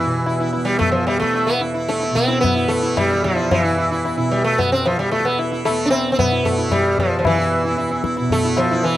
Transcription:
Already playing: tanpura E2 B2 E3, sitar E3
0.00 sitar E4
0.05 tanpura B2
0.26 sitar E4, tabla na
0.40 sitar E4
0.53 tanpura E3, sitar E4, tabla na
0.65 sitar G3
0.79 sitar A3, tabla tin, tabla ge
0.92 sitar F3
1.07 tanpura E3, sitar G3, tabla na
1.20 sitar A3, tabla ke
1.34 sitar E4, tabla tin
1.47 sitar B3
1.59 tanpura E2, sitar E4
1.74 sitar E4
1.89 sitar A3, tabla te
2.00 sitar E4, tabla te
2.11 tanpura B2, sitar C4
2.16 tabla ke
2.28 sitar E4, tabla te
2.41 sitar B3, tabla na, tabla ge
2.55 sitar E4
2.64 tanpura E3, sitar A3
2.71 tabla te
2.82 sitar E4
2.97 sitar G3, tabla na, tabla ge
3.10 sitar E4
3.15 tanpura E3
3.24 sitar F3, tabla ge
3.35 sitar E4
3.51 sitar E3, tabla na, tabla ge
3.64 tanpura E2, sitar E4
3.78 sitar E4
3.91 sitar E4
4.05 sitar E4, tabla na
4.16 tanpura B2, sitar E4
4.31 sitar G3
4.44 sitar A3
4.58 sitar B3, tabla tin, tabla ge
4.67 tanpura E3
4.72 sitar C4
4.86 sitar F3, tabla na
4.99 sitar G3
5.11 sitar A3, tabla tin
5.19 tanpura E3
5.25 sitar B3
5.38 sitar E4, tabla na
5.52 sitar E4
5.65 tanpura E2, sitar A3, tabla na
5.85 sitar D4
5.90 sitar C4, tabla na
6.12 sitar C4
6.19 tanpura B2, sitar B3, tabla na, tabla ge
6.31 sitar E4
6.45 sitar A3, tabla ge
6.58 sitar E4
6.69 tanpura E3, sitar G3, tabla na, tabla ge
6.98 sitar F3, tabla ge
7.19 tanpura E3, sitar F3
7.25 sitar E3, tabla na, tabla ge
7.39 sitar E4
7.65 sitar E4
7.70 tanpura E2
7.77 sitar E4, tabla te
7.90 sitar E4, tabla te
8.04 sitar E4, tabla ke
8.17 tanpura B2, sitar E4, tabla te
8.30 sitar A3, tabla tin, tabla ge
8.44 sitar E4
8.57 sitar F3, tabla na
8.70 tanpura E3, sitar E4
8.83 sitar E3, tabla tin

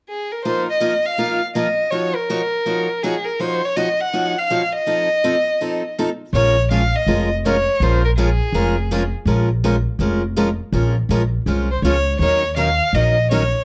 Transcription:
0.09 violin G#4
0.32 violin A#4
0.45 steel-string acoustic guitar F3 A#3 D#4 F4 A#4, violin C5
0.70 violin D#5
0.80 steel-string acoustic guitar F3 A#3 D#4 F4 A#4
1.06 violin F5
1.18 steel-string acoustic guitar F3 A#3 D#4 F4 A#4
1.55 steel-string acoustic guitar F3 A#3 D#4 F4 A#4, violin D#5
1.91 steel-string acoustic guitar F3 D#4 F#4 C#5, violin C#5
2.15 violin A#4
2.30 steel-string acoustic guitar F3 D#4 F#4 C#5
2.66 steel-string acoustic guitar F3 D#4 F#4 C#5
3.03 steel-string acoustic guitar F3 D#4 F#4 C#5, violin G#4
3.25 violin A#4
3.40 steel-string acoustic guitar F3 D#4 F#4 C#5, violin C5
3.65 violin C#5
3.76 steel-string acoustic guitar F3 D#4 F#4 C#5, violin D#5
4.01 violin F#5
4.13 steel-string acoustic guitar F3 D#4 F#4 C#5
4.38 violin F5
4.50 steel-string acoustic guitar F3 D#4 F#4 C#5
4.73 violin D#5
4.86 steel-string acoustic guitar F3 C4 D#4 A4
5.24 steel-string acoustic guitar F3 C4 D#4 A4
5.61 steel-string acoustic guitar F3 C4 D#4 A4
5.99 steel-string acoustic guitar F3 C4 D#4 A4
6.33 upright bass A#1, steel-string acoustic guitar F3 G#3 C#4 F4 A#4, violin C#5
6.71 steel-string acoustic guitar F3 G#3 C#4 F4 A#4, violin F5
6.96 violin D#5
7.07 upright bass F1, steel-string acoustic guitar F3 G#3 C#4 F4 A#4
7.45 steel-string acoustic guitar F3 G#3 C#4 F4 A#4, violin C#5
7.80 upright bass A#1, steel-string acoustic guitar F3 G#3 C#4 F4 A#4, violin C5
8.05 violin A#4
8.17 steel-string acoustic guitar F3 G#3 C#4 F4 A#4, violin G#4
8.53 upright bass F1, steel-string acoustic guitar F3 G#3 C#4 F4 A#4
8.91 steel-string acoustic guitar F3 G#3 C#4 F4 A#4
9.25 upright bass A#1, steel-string acoustic guitar F3 G#3 C#4 F4 A#4
9.64 steel-string acoustic guitar F3 G#3 C#4 F4 A#4
9.99 upright bass F1, steel-string acoustic guitar F3 G#3 C#4 F4 A#4
10.36 steel-string acoustic guitar F3 G#3 C#4 F4 A#4
10.72 upright bass A#1, steel-string acoustic guitar F3 G#3 C#4 F4 A#4
11.09 upright bass A#1, steel-string acoustic guitar F3 G#3 C#4 F4 A#4
11.46 upright bass C2, steel-string acoustic guitar F3 G#3 C#4 F4 A#4
11.71 violin C5
11.82 upright bass C#2, steel-string acoustic guitar F3 G#3 C#4 F4 A#4, violin C#5
12.19 upright bass D#2, steel-string acoustic guitar D#3 F#3 C#4 D#4 A#4, violin C#5
12.56 steel-string acoustic guitar D#3 F#3 C#4 D#4 A#4, violin F5
12.93 upright bass A#1, steel-string acoustic guitar D#3 F#3 C#4 D#4 A#4, violin D#5
13.31 steel-string acoustic guitar D#3 F#3 C#4 D#4 A#4, violin C#5

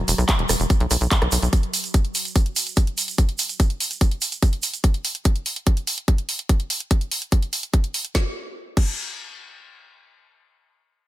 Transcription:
Already playing: ambient pad F#3
0.08 analog synth bass E1, open hi-hat, shaker
0.18 analog synth bass B1, cross-stick, closed hi-hat, shaker
0.28 kick, clap, closed hi-hat, shaker
0.39 analog synth bass E1, closed hi-hat
0.49 analog synth bass E1, cross-stick, open hi-hat, shaker
0.60 analog synth bass E1, closed hi-hat, shaker
0.70 kick, closed hi-hat, shaker
0.80 analog synth bass B1, closed hi-hat
0.91 analog synth bass B1, cross-stick, open hi-hat, shaker
1.01 analog synth bass B1, closed hi-hat, shaker
1.11 kick, clap, closed hi-hat, shaker
1.22 analog synth bass B1, cross-stick, closed hi-hat
1.32 analog synth bass B1, open hi-hat, shaker
1.42 analog synth bass B1, closed hi-hat, shaker
1.53 kick, closed hi-hat, shaker
1.63 closed hi-hat
1.74 open hi-hat, shaker
1.84 closed hi-hat, shaker
1.94 kick, closed hi-hat, shaker
2.05 closed hi-hat
2.15 open hi-hat, shaker
2.25 closed hi-hat, shaker
2.36 kick, closed hi-hat, shaker
2.46 closed hi-hat
2.56 open hi-hat, shaker
2.67 closed hi-hat, shaker
2.77 kick, closed hi-hat, shaker
2.87 closed hi-hat
2.98 open hi-hat, shaker
3.08 closed hi-hat, shaker
3.18 kick, closed hi-hat
3.29 closed hi-hat
3.38 open hi-hat, shaker
3.49 closed hi-hat, shaker
3.60 kick, closed hi-hat, shaker
3.70 closed hi-hat
3.80 open hi-hat, shaker
3.91 closed hi-hat, shaker
4.01 kick, closed hi-hat, shaker
4.11 closed hi-hat
4.22 open hi-hat, shaker
4.32 closed hi-hat, shaker
4.42 kick, closed hi-hat, shaker
4.53 closed hi-hat
4.63 open hi-hat, shaker
4.74 closed hi-hat, shaker
4.84 kick, closed hi-hat
4.94 closed hi-hat
5.05 open hi-hat
5.15 closed hi-hat
5.25 kick, closed hi-hat
5.36 closed hi-hat
5.46 open hi-hat
5.56 closed hi-hat
5.67 kick, closed hi-hat
5.77 closed hi-hat
5.87 open hi-hat
5.98 closed hi-hat
6.08 kick, closed hi-hat
6.18 closed hi-hat
6.29 open hi-hat
6.39 closed hi-hat
6.49 kick, closed hi-hat
6.60 closed hi-hat
6.70 open hi-hat
6.80 closed hi-hat
6.91 kick, closed hi-hat
7.01 closed hi-hat
7.11 open hi-hat
7.22 closed hi-hat
7.32 kick, closed hi-hat
7.42 closed hi-hat
7.53 open hi-hat
7.63 closed hi-hat
7.74 kick, closed hi-hat
7.84 closed hi-hat
7.94 open hi-hat
8.05 closed hi-hat
8.15 kick, snare
8.77 kick, crash

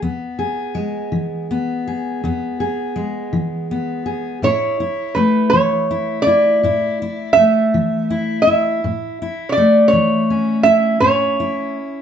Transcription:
0.02 steel-string acoustic guitar E2 B3
0.39 steel-string acoustic guitar G#4
0.75 steel-string acoustic guitar G#3
1.12 steel-string acoustic guitar E3
1.51 steel-string acoustic guitar B3
1.87 steel-string acoustic guitar G#4
2.24 steel-string acoustic guitar E2 B3
2.60 steel-string acoustic guitar G#4
2.96 steel-string acoustic guitar G#3
3.33 steel-string acoustic guitar E3
3.71 steel-string acoustic guitar B3
4.06 steel-string acoustic guitar G#4
4.42 steel-string acoustic guitar A2 E4, resonator guitar played with a steel bar C#5
4.80 steel-string acoustic guitar E4
5.15 steel-string acoustic guitar A3, resonator guitar played with a steel bar B4
5.50 steel-string acoustic guitar E3, resonator guitar played with a steel bar C#5
5.91 steel-string acoustic guitar E4
6.22 resonator guitar played with a steel bar D5
6.27 steel-string acoustic guitar E4
6.63 steel-string acoustic guitar A2 E4
7.02 steel-string acoustic guitar E4
7.33 steel-string acoustic guitar A3, resonator guitar played with a steel bar E5
7.74 steel-string acoustic guitar E3
8.10 steel-string acoustic guitar E4
8.42 resonator guitar played with a steel bar E5
8.47 steel-string acoustic guitar E4
8.84 steel-string acoustic guitar A2
9.22 steel-string acoustic guitar E4
9.49 resonator guitar played with a steel bar C#5 D5
9.57 steel-string acoustic guitar A3
9.88 resonator guitar played with a steel bar C#5
9.93 steel-string acoustic guitar E3
10.30 steel-string acoustic guitar C#4
10.63 steel-string acoustic guitar E4, resonator guitar played with a steel bar E5
11.00 steel-string acoustic guitar A2 C#4, resonator guitar played with a steel bar C#5
11.40 steel-string acoustic guitar E4

